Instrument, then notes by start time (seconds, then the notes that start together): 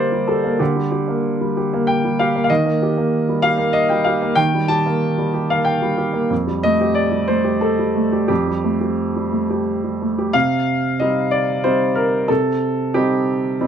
grand piano
Already playing: D3 G3 A#3 G4 C5 D5 D#5
0.12 G3
0.28 G4 A4
0.44 A#3
0.59 D3 G4
0.76 G3
0.92 G4
1.08 A#3
1.41 G3
1.57 G4
1.73 A#3
1.87 G5
2.05 G3
2.19 G4 F5
2.36 A#3
2.44 F5
2.50 D#3 D#5
2.66 A#3
2.82 G4
2.97 A#3
3.29 G3
3.42 G4 F5
3.58 A#3
3.73 D#5
3.89 G3 G5
4.04 G4 F5
4.22 A#3
4.35 D#3 G5
4.54 G3
4.68 G4 A5
4.86 A#3
5.18 G3
5.34 G4
5.50 A#3 F5
5.65 G5
5.82 G3
5.98 G4
6.13 A#3
6.30 F2
6.47 G3
6.63 A3 D#5
6.81 G4
6.95 D5
7.12 G3
7.28 A3 C5
7.44 G4
7.61 A4
7.79 G3
7.95 A3
8.12 G4
8.28 F2 G4
8.47 G3
8.64 A3
8.81 G4
9.16 G3
9.32 A3
9.50 G4
9.84 G3
10.02 A3
10.18 G4
10.33 C3 F5
11.00 G3 C4 D#4 D#5
11.31 D5
11.64 G3 C4 D#4 C5
11.95 A#4
12.28 C3 A4
12.94 G3 C4 D#4 G4
13.61 G3 C4 D#4